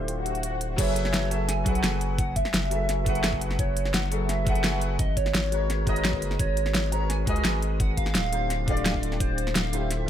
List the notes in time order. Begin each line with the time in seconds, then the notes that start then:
Already playing: D1 D3 A3 E4 F4 G4 C5
0.08 closed hi-hat, swell
0.26 closed hi-hat
0.35 closed hi-hat
0.43 closed hi-hat
0.61 closed hi-hat
0.76 F#1 F#3 F#4 G#4 A4 B4 C#5, kick, closed hi-hat, crash
0.80 E5
0.96 closed hi-hat
1.04 C#5, snare
1.14 snare, closed hi-hat
1.30 F#3 F#4 G#4 A4 B4 E5 A5, closed hi-hat
1.48 G#5, snare, closed hi-hat
1.64 B1 F#3 F#4 G#4 A4 B4 G#5, kick, closed hi-hat
1.68 F#5
1.75 closed hi-hat
1.83 F#1, snare, closed hi-hat
2.01 closed hi-hat
2.18 F#5, kick, closed hi-hat
2.36 E5, kick, closed hi-hat
2.45 snare
2.54 F#1, snare, closed hi-hat
2.70 F#3 F#4 G#4 A4 B4 E5, closed hi-hat
2.89 snare, closed hi-hat
3.04 F#3 F#4 G#4 A4 B4, kick, closed hi-hat
3.09 F#5
3.15 closed hi-hat
3.24 snare, closed hi-hat
3.33 kick
3.42 closed hi-hat
3.51 snare
3.59 C#5, kick, closed hi-hat
3.77 closed hi-hat
3.85 snare
3.93 F#1 F#5, snare, closed hi-hat
4.11 F#3 F#4 G#4 A4 B4 E5, closed hi-hat
4.29 E5, snare, closed hi-hat
4.45 F#3 F#4 G#4 A4 B4, kick, closed hi-hat
4.49 F#5
4.55 F#1, closed hi-hat
4.64 snare, closed hi-hat
4.82 closed hi-hat
4.99 G#1 D#5, kick, closed hi-hat
5.17 C#5, kick, closed hi-hat
5.26 snare
5.34 G#1, snare, closed hi-hat
5.51 G#3 F#4 A#4 B4 C#5, closed hi-hat
5.70 snare, closed hi-hat
5.85 G#3 F#4 A#4 B4, kick, closed hi-hat
5.89 D#5
5.96 closed hi-hat
6.05 snare, closed hi-hat
6.13 kick
6.22 F#1, closed hi-hat
6.31 snare
6.39 G#1 C#5, kick, closed hi-hat
6.57 closed hi-hat
6.66 C#5, snare
6.75 snare, closed hi-hat
6.91 G#3 F#4 A#4 B4 C#5 A#5, closed hi-hat
7.09 G#5, snare, closed hi-hat
7.25 C#2 G#3 F#4 A#4 B4 G#5, kick, closed hi-hat
7.29 D#5
7.36 closed hi-hat
7.45 G#1, snare, closed hi-hat
7.62 closed hi-hat
7.80 F#5, kick, closed hi-hat
7.97 F5, kick, closed hi-hat
8.06 snare
8.15 D1, snare, closed hi-hat
8.32 D3 A3 D4 F4 G4 C5, closed hi-hat
8.50 snare, closed hi-hat
8.66 D3 A3 D4 F4 G4, kick, closed hi-hat
8.70 D5
8.77 closed hi-hat
8.86 snare, closed hi-hat
8.94 kick
9.03 closed hi-hat
9.12 snare
9.20 C5, kick, closed hi-hat
9.38 closed hi-hat
9.47 snare
9.55 D1 F5, snare, closed hi-hat
9.72 D3 A3 E4 F4 G4 C5, closed hi-hat
9.90 E5, snare, closed hi-hat
10.06 D3